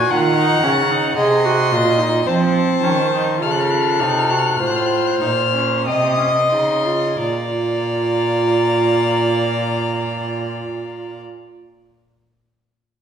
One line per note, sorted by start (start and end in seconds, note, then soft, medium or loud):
0.00 0.11 F#4 loud
0.00 0.12 G#5 loud
0.10 0.62 D#3 medium
0.10 0.36 F4 loud
0.10 1.16 F#5 loud
0.10 1.16 A#5 medium
0.36 0.65 D#4 loud
0.63 1.16 C#3 medium
0.63 0.92 C#4 medium
0.91 1.17 D#4 medium
1.17 1.73 C3 medium
1.17 1.46 G#4 loud
1.17 2.28 D#5 loud
1.17 2.30 C6 loud
1.45 1.74 F#4 loud
1.72 2.27 A#2 medium
1.72 2.00 F4 medium
1.99 2.27 D#4 medium
2.27 2.83 F3 medium
2.27 2.85 C4 medium
2.27 3.41 C5 medium
2.27 3.44 A5 medium
2.83 3.41 D#3 medium
2.83 3.12 C#4 medium
3.13 3.39 D#4 medium
3.40 4.02 C#3 medium
3.40 4.01 F4 medium
3.40 4.59 A4 medium
3.40 3.53 F6 medium
3.52 3.62 F#6 medium
3.61 3.72 F6 medium
3.71 3.83 F#6 medium
3.81 3.92 F6 medium
3.90 4.01 F#6 medium
3.99 4.59 C3 medium
3.99 4.31 D#4 medium
3.99 4.11 F6 medium
4.10 4.21 F#6 medium
4.19 4.31 F6 medium
4.30 4.60 F#4 medium
4.30 4.40 F#6 medium
4.39 4.48 F6 medium
4.47 4.58 F#6 medium
4.57 5.21 A2 medium
4.57 5.20 F4 medium
4.57 4.69 F6 medium
4.62 5.85 C5 medium
4.67 4.78 F#6 medium
4.76 4.88 F6 medium
4.86 4.98 F#6 medium
4.96 5.08 F6 medium
5.07 5.18 F#6 medium
5.17 5.87 F6 medium
5.21 5.87 A#2 medium
5.21 5.29 D#4 medium
5.53 5.87 C#4 medium
5.85 6.54 C3 medium
5.85 6.17 C4 medium
5.85 7.19 D#5 medium
5.85 6.52 D#6 medium
6.17 6.25 C#4 medium
6.51 7.20 C#3 medium
6.51 6.87 D#4 medium
6.51 7.19 C6 medium
6.85 7.19 F4 medium
7.19 11.21 A#2 medium
7.19 11.20 F4 medium
7.19 11.21 D5 medium
7.19 11.21 A#5 medium